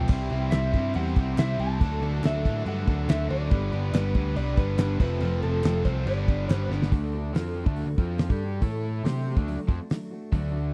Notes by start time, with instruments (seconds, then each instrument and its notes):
Already playing: overdriven electric guitar A4, electric slide guitar G5
0.08 picked electric bass C2, overdriven electric guitar C3 E3 G3 C4 E4 C5, steel-string acoustic guitar C3 G3 C4 E4 G4, kick, crash
0.30 picked electric bass C2, distorted electric guitar C3, overdriven electric guitar G3 C4 E4 C5, steel-string acoustic guitar E4 G4, crash
0.34 steel-string acoustic guitar C4
0.51 picked electric bass C2, overdriven electric guitar C3 G3 C4 E4, steel-string acoustic guitar C3 G3 C4, electric slide guitar E5, snare, clap, crash
0.55 steel-string acoustic guitar E4 G4, overdriven electric guitar C5
0.72 picked electric bass G2, distorted electric guitar C3, overdriven electric guitar G3 C4 E4 C5, steel-string acoustic guitar G4, kick, crash
0.77 steel-string acoustic guitar C4 E4
0.94 picked electric bass E2, overdriven electric guitar C3 E3 C5, distorted electric guitar C3 G3 C4, steel-string acoustic guitar G3 C4 E4, electric slide guitar F#5, crash
0.98 steel-string acoustic guitar G4
1.06 snare
1.15 picked electric bass C2, distorted electric guitar C3 G3 C4, overdriven electric guitar G3 C5, steel-string acoustic guitar G4, kick, crash
1.20 steel-string acoustic guitar C4 E4
1.37 picked electric bass C2, overdriven electric guitar C3 G3 C4 E4 C5, steel-string acoustic guitar C3 G3 C4 E4 G4, electric slide guitar E5, snare, clap, crash
1.57 picked electric bass C2, distorted electric guitar C3, overdriven electric guitar G3 C4 E4, steel-string acoustic guitar E4 G4, electric slide guitar A5, crash
1.63 steel-string acoustic guitar C4
1.79 picked electric bass D2, overdriven electric guitar D3 F#3 A3 D4, steel-string acoustic guitar D3, kick, crash
1.83 steel-string acoustic guitar D4 F#4 A4
2.02 picked electric bass D2, distorted electric guitar D3, overdriven electric guitar F#3 A3 D4, steel-string acoustic guitar D4 F#4 A4, crash
2.22 picked electric bass D2, overdriven electric guitar D3 F#3 A3 D4, steel-string acoustic guitar D3 D4 F#4 A4, snare, clap, crash
2.26 electric slide guitar E5
2.44 picked electric bass A2, distorted electric guitar D3, overdriven electric guitar F#3 A3 D4, steel-string acoustic guitar D4 F#4 A4, kick, crash
2.65 picked electric bass G2, steel-string acoustic guitar D3 D4 F#4 A4, distorted electric guitar D3 A3 D4, electric slide guitar F#5, crash
2.87 picked electric bass D2, distorted electric guitar D3 A3 D4, steel-string acoustic guitar D4 F#4 A4, kick, crash
3.08 picked electric bass D2, overdriven electric guitar D3 F#3 A3 D4, steel-string acoustic guitar D3 D4 F#4 A4, electric slide guitar E5, snare, clap, crash
3.29 picked electric bass D2, distorted electric guitar D3, overdriven electric guitar F#3 A3 D4, steel-string acoustic guitar F#4 A4, electric slide guitar D5, crash
3.34 steel-string acoustic guitar D4
3.51 picked electric bass G1, overdriven electric guitar G2 D3 G3 B3 D4, steel-string acoustic guitar G3 B3 D4 B4, kick, crash
3.71 picked electric bass G1, distorted electric guitar G2 D3, overdriven electric guitar G3 B3 D4, steel-string acoustic guitar B3 B4, crash
3.77 steel-string acoustic guitar D4
3.93 picked electric bass G1, overdriven electric guitar G2 D3 G3 B3 D4, steel-string acoustic guitar G3 B3 D4 B4, electric slide guitar B4, snare, clap, crash
4.14 picked electric bass D2, distorted electric guitar G2 D3, overdriven electric guitar G3 B3 D4, steel-string acoustic guitar B3 D4 B4, kick, crash
4.36 picked electric bass C2, distorted electric guitar G2 D3 G3, steel-string acoustic guitar G3 B3 D4 B4, electric slide guitar D5, crash
4.57 picked electric bass G1, distorted electric guitar G2 D3 G3, steel-string acoustic guitar B3 D4 B4, electric slide guitar B4, kick, crash
4.77 picked electric bass G1, distorted electric guitar G2, overdriven electric guitar D3 G3 B3 D4, steel-string acoustic guitar G3 B3 D4 B4, snare, clap, crash
4.99 picked electric bass F1, overdriven electric guitar F2 C3 F3 A3 C4, steel-string acoustic guitar C4 F4 A4, electric slide guitar B4, kick, crash
5.20 picked electric bass F1, overdriven electric guitar F2 C3 F3 A3 C4, steel-string acoustic guitar F3 A3 C4, crash
5.24 steel-string acoustic guitar F4 A4
5.42 picked electric bass F1, distorted electric guitar F2 C3, overdriven electric guitar F3 A3 C4, steel-string acoustic guitar F4 A4, electric slide guitar A4, crash
5.47 steel-string acoustic guitar C4
5.63 picked electric bass F1, overdriven electric guitar F2 C3 F3 A3 C4, steel-string acoustic guitar F3 A3 C4 F4, snare, clap, crash
5.67 steel-string acoustic guitar A4
5.84 picked electric bass C2, distorted electric guitar F2 C3, overdriven electric guitar F3 A3 C4, steel-string acoustic guitar F4 A4, electric slide guitar C5, kick, crash
5.89 steel-string acoustic guitar C4
6.05 picked electric bass G1, overdriven electric guitar G2 D3 G3 B3 D4, steel-string acoustic guitar G3 B3, electric slide guitar D5, crash
6.10 steel-string acoustic guitar B4
6.28 picked electric bass G1, distorted electric guitar G2 D3 G3, steel-string acoustic guitar B3 B4, kick, crash
6.32 steel-string acoustic guitar D4
6.49 picked electric bass G1, distorted electric guitar G2, overdriven electric guitar D3 G3 B3 D4, steel-string acoustic guitar G3 B3 D4 B4, electric slide guitar C5, snare, clap, crash
6.69 picked electric bass G1, distorted electric guitar G2 D3, overdriven electric guitar G3 B3 D4, steel-string acoustic guitar B3 B4, snare
6.74 steel-string acoustic guitar D4
6.82 snare
6.91 picked electric bass D2, overdriven electric guitar D3 A3 D4, steel-string acoustic guitar D3 D4 F#4 A4, kick, open hi-hat
7.13 steel-string acoustic guitar D4 F#4 A4
7.33 picked electric bass F2, steel-string acoustic guitar D3 D4, overdriven electric guitar F3 C4 F4, snare, open hi-hat
7.38 steel-string acoustic guitar F#4 A4
7.56 steel-string acoustic guitar D4 F#4 A4
7.64 picked electric bass D2, overdriven electric guitar D3 A3 D4, kick
7.76 steel-string acoustic guitar D3 D4 F#4 A4, open hi-hat
7.86 picked electric bass D2, overdriven electric guitar D3 A3
7.97 picked electric bass F2, overdriven electric guitar F3 C4 F4, steel-string acoustic guitar D4 F#4 A4, kick
8.18 steel-string acoustic guitar D3 D4 F#4 A4, snare, open hi-hat
8.29 picked electric bass G2, overdriven electric guitar G3 D4 G4, kick
8.41 steel-string acoustic guitar D4 F#4 A4
8.61 picked electric bass A2, steel-string acoustic guitar A2 E3 A3 E4 A4, overdriven electric guitar A3 E4 A4, kick, open hi-hat
8.83 steel-string acoustic guitar A3 E4 A4
9.04 picked electric bass C3, steel-string acoustic guitar F#3 A3 D4 F#4, overdriven electric guitar C4 G4 C5, snare, open hi-hat
9.18 snare
9.26 steel-string acoustic guitar A3 D4 F#4
9.36 picked electric bass D2, overdriven electric guitar D3 A3 D4, kick
9.47 steel-string acoustic guitar D3 F#3 A3 D4 F#4, open hi-hat
9.58 muted overdriven electric guitar stroke, muted picked electric bass stroke
9.68 picked electric bass F2, overdriven electric guitar F3 C4, steel-string acoustic guitar A3 D4 F#4, kick
9.90 steel-string acoustic guitar F#3 A3 D4 F#4, snare, open hi-hat
10.11 steel-string acoustic guitar A3 D4 F#4
10.32 picked electric bass D2, steel-string acoustic guitar D3 F#3 A3 D4 F#4, overdriven electric guitar D3 A3 D4, kick, open hi-hat
10.52 steel-string acoustic guitar A3 D4 F#4